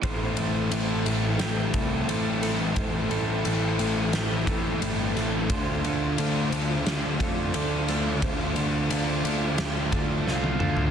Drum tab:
RD |x-x-x-x-x-x-x-x-|x-x-x-x-x-x-x-x-|x-x-x-x-x-x-x-x-|x-x-x-x-x-x-----|
SD |--------o-----o-|--------o-----o-|--------o-----o-|--------o---o---|
T1 |----------------|----------------|----------------|-------------o--|
T2 |----------------|----------------|----------------|--------------o-|
FT |----------------|----------------|----------------|---------------o|
BD |o---------o-----|o---------o-----|o---------o-----|o---------o-----|